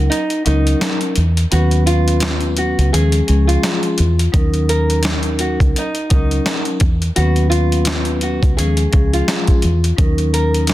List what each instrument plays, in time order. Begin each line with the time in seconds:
Already playing: vibraphone F#3 C#4 D#4 A#4
0.10 nylon-string guitar D#4, closed hi-hat
0.30 closed hi-hat
0.45 fingered electric bass C#2, vibraphone F#3 C#4 D#4 A#4, nylon-string guitar D#4, closed hi-hat
0.67 closed hi-hat
0.81 snare, closed hi-hat
1.01 closed hi-hat
1.16 fingered electric bass E2, closed hi-hat
1.37 closed hi-hat
1.51 fingered electric bass D#2, vibraphone F#3 B3 C#4 B4, nylon-string guitar F#4, closed hi-hat
1.71 closed hi-hat
1.86 nylon-string guitar F4, closed hi-hat
2.08 closed hi-hat
2.20 snare, closed hi-hat
2.40 closed hi-hat
2.57 nylon-string guitar F#4, closed hi-hat
2.78 fingered electric bass C#2, closed hi-hat
2.93 fingered electric bass D#2, vibraphone F3 G#3 C#4 G#4, nylon-string guitar G#4, closed hi-hat
3.12 closed hi-hat
3.27 fingered electric bass C#2, vibraphone F3 G#3 C#4 G#4, closed hi-hat
3.47 nylon-string guitar F4, closed hi-hat
3.63 snare, closed hi-hat
3.83 closed hi-hat
3.98 fingered electric bass E2, closed hi-hat
4.19 closed hi-hat
4.32 fingered electric bass D#2, vibraphone F#3 C#4 D#4 A#4, kick, closed hi-hat
4.54 closed hi-hat
4.69 nylon-string guitar A#4, closed hi-hat
4.90 closed hi-hat
5.03 snare, closed hi-hat
5.23 closed hi-hat
5.39 nylon-string guitar F#4, closed hi-hat
5.60 fingered electric bass C#2, kick, closed hi-hat
5.76 nylon-string guitar D#4, closed hi-hat
5.95 closed hi-hat
6.09 fingered electric bass C#2, vibraphone F#3 C#4 D#4 A#4, nylon-string guitar D#4, kick, closed hi-hat
6.31 closed hi-hat
6.46 snare, closed hi-hat
6.65 closed hi-hat
6.80 fingered electric bass E2, kick, closed hi-hat
7.02 closed hi-hat
7.16 fingered electric bass D#2, vibraphone F#3 B3 C#4 B4, nylon-string guitar F#4, closed hi-hat
7.36 closed hi-hat
7.50 nylon-string guitar F4, closed hi-hat
7.72 closed hi-hat
7.85 snare, closed hi-hat
8.05 closed hi-hat
8.21 nylon-string guitar F#4, closed hi-hat
8.43 fingered electric bass C#2, kick, closed hi-hat
8.57 fingered electric bass D#2, vibraphone F3 G#3 C#4 G#4, nylon-string guitar G#4, closed hi-hat
8.77 closed hi-hat
8.92 fingered electric bass C#2, vibraphone F3 G#3 C#4 G#4, kick, closed hi-hat
9.13 nylon-string guitar F4, closed hi-hat
9.28 snare, closed hi-hat
9.47 kick, closed hi-hat
9.62 fingered electric bass E2, closed hi-hat
9.84 closed hi-hat
9.96 fingered electric bass D#2, vibraphone F#3 C#4 D#4 A#4, kick, closed hi-hat
10.18 closed hi-hat
10.33 nylon-string guitar A#4, closed hi-hat
10.54 closed hi-hat
10.67 snare, closed hi-hat